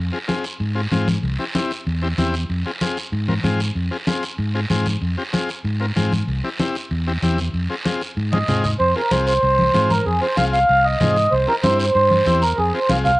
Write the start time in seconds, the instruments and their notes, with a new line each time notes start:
0.12 transistor combo organ C4 F4 G#4, high conga
0.28 transistor combo organ C4 F4 G#4, high conga, short guiro
0.44 short guiro
0.60 fingered electric bass G#2, high conga, long guiro
0.75 transistor combo organ C4 F4 G#4
0.91 fingered electric bass G#2, transistor combo organ C4 F4 G#4, high conga, short guiro
1.08 high conga, short guiro
1.23 fingered electric bass C2, long guiro
1.39 transistor combo organ C4 E4 G4, high conga
1.55 transistor combo organ C4 E4 G4, high conga, short guiro
1.71 short guiro
1.87 fingered electric bass E2, high conga, long guiro
2.02 transistor combo organ C4 E4 G4
2.18 fingered electric bass E2, transistor combo organ C4 E4 G4, high conga, short guiro
2.34 short guiro
2.50 fingered electric bass F2, long guiro
2.66 transistor combo organ C4 F4 G#4, high conga
2.81 transistor combo organ C4 F4 G#4, high conga, short guiro
2.97 short guiro
3.12 fingered electric bass G#2, high conga, long guiro
3.28 transistor combo organ C4 F4 A#4, high conga
3.44 fingered electric bass G#2, transistor combo organ C4 F4 G#4, high conga, short guiro
3.60 short guiro
3.75 fingered electric bass F2, long guiro
3.91 transistor combo organ C4 F4 G#4, high conga
4.07 transistor combo organ C4 F4 G#4, high conga, short guiro
4.23 short guiro
4.38 fingered electric bass G#2, high conga, long guiro
4.54 transistor combo organ C4 F4 G#4
4.70 fingered electric bass G#2, transistor combo organ C4 F4 G#4, high conga, short guiro
4.86 high conga, short guiro
5.01 fingered electric bass F2, long guiro
5.17 transistor combo organ C4 F4 G4, high conga
5.33 transistor combo organ C4 F4 G#4, high conga, short guiro
5.49 short guiro
5.64 fingered electric bass G#2, high conga, long guiro
5.80 transistor combo organ C4 F4 A#4
5.96 fingered electric bass G#2, transistor combo organ C4 F4 G#4, high conga, short guiro
6.12 high conga, short guiro
6.28 fingered electric bass C2, long guiro
6.44 transistor combo organ C4 E4 G4, high conga
6.60 transistor combo organ C4 E4 G4, high conga, short guiro
6.75 short guiro
6.91 fingered electric bass E2, high conga, long guiro
7.07 transistor combo organ C4 E4 G4
7.22 fingered electric bass E2, transistor combo organ C4 E4 G4, high conga, short guiro
7.38 high conga, short guiro
7.53 fingered electric bass F2, long guiro
7.69 transistor combo organ C4 F4 G#4, high conga
7.85 transistor combo organ C4 F4 G#4, high conga, short guiro
8.01 short guiro
8.17 fingered electric bass G#2, high conga, long guiro
8.32 transistor combo organ C4 F4 G#4, accordion D#5, high conga
8.48 fingered electric bass G#2, transistor combo organ C4 F4 G#4, low conga, short guiro
8.64 accordion D#5, low conga, short guiro
8.79 fingered electric bass F2, accordion C5, long guiro
8.95 transistor combo organ C4 F4 G#4, accordion A#4, high conga
9.11 fingered electric bass C2, transistor combo organ C4 F4 G#4, accordion C5, high conga, short guiro
9.27 accordion C5, short guiro
9.43 fingered electric bass C2, high conga, long guiro
9.59 high conga
9.74 fingered electric bass G#2, transistor combo organ C4 F4 G#4, high conga, short guiro
9.90 accordion A#4, high conga, short guiro
10.06 fingered electric bass F2, accordion G#4, long guiro
10.21 transistor combo organ C4 F4 G#4, accordion C5, high conga
10.37 fingered electric bass C2, transistor combo organ C4 F4 G#4, accordion F5, high conga, short guiro
10.53 accordion F5, short guiro
10.69 fingered electric bass C2, high conga, long guiro
10.84 accordion D#5
11.01 fingered electric bass G#2, transistor combo organ C4 F4 G#4, high conga, low conga, short guiro
11.17 short guiro
11.32 fingered electric bass C2, accordion C5, long guiro
11.47 transistor combo organ C4 E4 G4, accordion A#4, high conga
11.63 fingered electric bass G2, transistor combo organ C4 E4 G4, accordion C5, high conga, short guiro
11.79 accordion C5, short guiro
11.95 fingered electric bass G2, accordion C5, high conga, long guiro
12.11 high conga
12.26 fingered electric bass E2, transistor combo organ C4 E4 G4, high conga, short guiro
12.42 accordion A#4, short guiro
12.58 fingered electric bass F2, accordion G#4, long guiro
12.73 transistor combo organ C4 F4 G#4, accordion C5, high conga
12.89 fingered electric bass C2, transistor combo organ C4 F4 G#4, accordion F5, high conga, short guiro
13.05 accordion F5, low conga, short guiro